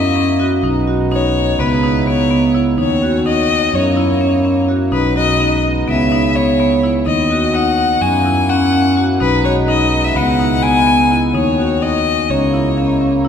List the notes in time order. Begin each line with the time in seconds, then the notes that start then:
Already playing: F#2 F#3 A#3 E4 D#5
0.16 C#4
0.40 F#4
0.63 B1 G#3 B3 D#4
0.87 F#4
1.12 D#4 C#5
1.59 C#2 C#3 B3 E4 B4
1.83 D#4
2.07 B3 C#5
2.31 B3
2.54 E4
2.78 D#2 D#3 C#4 D#4 F#4 C#5
3.02 F#4
3.26 D#4 D#5
3.73 F#2 F#3 A#3 C#4 E4 C#5
3.97 E4
4.21 C#4
4.45 C#4
4.69 F#4
4.92 B1 G#3 B3 D#4 B4
5.16 F#4 D#5
5.40 D#4
5.87 C#2 C#3 B3 C#4 E4 E5
6.12 D#4
6.36 B3 C#5
6.60 B3
6.83 E4
7.06 D#2 D#3 C#4 D#4 F#4 D#5
7.30 F#4
7.54 D#4 F#5
8.00 F#2 F#3 A#3 C#4 E4 G#5
8.26 E4
8.49 C#4 F#5
8.73 C#4
8.97 F#4
9.20 B1 G#3 B3 D#4 B4
9.45 F#4 C#5
9.68 D#4 D#5
10.04 E5
10.15 C#2 C#3 B3 E4 F#5
10.40 D#4
10.62 B3 G#5
10.87 B3
11.11 E4
11.34 D#2 D#3 C#4 D#4 F#4 C#5
11.58 F#4
11.82 D#4 D#5
12.29 C#2 C#3 A#3 C#4 D#4 E4 C#5
12.54 E4
12.78 C#4
13.01 C#4
13.25 E4